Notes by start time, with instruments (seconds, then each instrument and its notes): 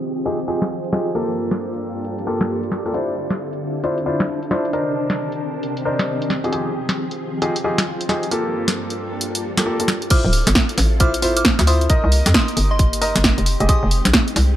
Already playing: string machine D#3 F3 C4 G4 G#4, ambient pad F4 C5
0.26 grand piano D#4 F4 G4 G#4, closed hi-hat
0.39 closed hi-hat
0.48 grand piano D#4 F4 G4 G#4
0.62 snare, closed hi-hat
0.84 closed hi-hat
0.93 grand piano D#4 F4 G4 G#4, snare
1.07 closed hi-hat
1.15 string machine G2 A#3 D4 F4 A4, grand piano A#3 F4 G4 A4, ambient pad G4, closed hi-hat
1.34 ambient pad D5
1.51 snare, closed hi-hat
1.74 closed hi-hat
2.05 closed hi-hat
2.19 closed hi-hat
2.27 grand piano A#3 F4 G4 A4
2.41 snare, closed hi-hat
2.63 closed hi-hat
2.72 snare
2.86 grand piano A#3 F4 G4 A4, closed hi-hat
2.94 string machine D3 C4 E4 F4, grand piano D4 E4 F4 C5, ambient pad D4, closed hi-hat
3.12 ambient pad A5
3.30 snare, closed hi-hat
3.53 closed hi-hat
3.84 grand piano D4 E4 F4 C5, closed hi-hat
3.98 closed hi-hat
4.06 grand piano D4 E4 F4 C5
4.20 snare, closed hi-hat
4.43 closed hi-hat
4.51 grand piano D4 E4 F4 C5, snare
4.65 closed hi-hat
4.73 string machine C3 D#3 G4 A#4 C5, ambient pad C4, grand piano D4 D#4 A#4 C5, closed hi-hat
5.10 snare, closed hi-hat
5.32 closed hi-hat
5.45 ambient pad D#6
5.63 closed hi-hat
5.77 closed hi-hat
5.85 grand piano D4 D#4 A#4 C5
5.99 snare, closed hi-hat
6.22 closed hi-hat
6.30 string machine F3 C4 G#4, ambient pad F4, snare
6.44 grand piano D#4 F4 G4 G#4, closed hi-hat
6.52 grand piano D#4 F4 G4 G#4, closed hi-hat
6.78 ambient pad C5
6.89 snare, closed hi-hat
7.11 closed hi-hat
7.42 grand piano D#4 F4 G4 G#4, closed hi-hat
7.56 closed hi-hat
7.64 grand piano D#4 F4 G4 G#4
7.78 snare, closed hi-hat
8.01 closed hi-hat
8.09 grand piano D#4 F4 G4 G#4, snare
8.23 closed hi-hat
8.31 string machine G2 A#3 D4 F4 A4, grand piano A#3 F4 G4 A4, ambient pad G4, closed hi-hat
8.68 snare, closed hi-hat
8.75 ambient pad D5
8.90 closed hi-hat
9.21 closed hi-hat
9.35 closed hi-hat
9.57 grand piano A#3 F4 G4 A4, snare, closed hi-hat
9.66 grand piano A#3 F4 G4 A4
9.80 grand piano A#3 F4 G4 A4, closed hi-hat
9.88 snare
10.02 closed hi-hat
10.10 string machine C4 E4 F4 A4, grand piano E4 F4 C5, synth bell D6 F6, kick, closed hi-hat, crash
10.25 fm bass D1
10.33 open hi-hat
10.47 fm bass G1, snare, closed hi-hat
10.55 kick, snare
10.69 closed hi-hat
10.78 fm bass A1, snare, open hi-hat
11.00 grand piano E4 F4 C5, synth bell D6 F6, kick, closed hi-hat
11.14 closed hi-hat
11.22 grand piano E4 F4 C5, open hi-hat
11.37 synth bell D6 F6, closed hi-hat
11.45 kick, snare
11.59 fm bass D2, snare, closed hi-hat
11.67 grand piano E4 F4 C5, synth bell C6 D#6, open hi-hat
11.81 closed hi-hat
11.90 string machine A#3 D#4 G4 D6, grand piano D#4 A#4 D#5, kick, closed hi-hat
12.04 fm bass C2
12.12 open hi-hat
12.26 fm bass F2, snare, closed hi-hat
12.34 synth bell C6 D#6, kick, snare
12.48 closed hi-hat
12.57 fm bass G1, open hi-hat
12.71 synth bell D#5 C6
12.79 kick, closed hi-hat
12.93 closed hi-hat
13.01 grand piano D#4 A#4 D#5, open hi-hat
13.16 fm bass G1, snare, closed hi-hat
13.24 kick, snare
13.38 fm bass F1, closed hi-hat
13.46 string machine G#3 C4 D#4, open hi-hat
13.60 fm bass F1, grand piano G4 G#4 D#5, closed hi-hat
13.69 grand piano G4 G#4 D#5, synth bell C6 D#6, kick, closed hi-hat
13.83 fm bass F1
13.91 open hi-hat
14.05 fm bass A#1, snare, closed hi-hat
14.14 kick, snare
14.28 closed hi-hat
14.36 fm bass C2, snare, open hi-hat